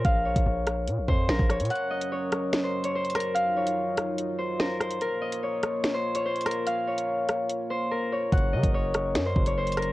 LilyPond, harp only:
\new Staff \with { instrumentName = "Harp" } { \time 4/4 \key bes \minor \tempo 4 = 145 f''8 des''2 c''8 bes'8 des''8 | ges''8 ees''8 des''4~ des''16 c''8 des''16 c''8 bes'8 | f''8 des''2 c''8 bes'8 c''8 | bes'8 ees''8 des''4~ des''16 c''8 des''16 c''8 bes'8 |
f''8 des''2 c''8 bes'8 des''8 | ges''8 ees''8 des''4~ des''16 c''8 des''16 c''8 bes'8 | }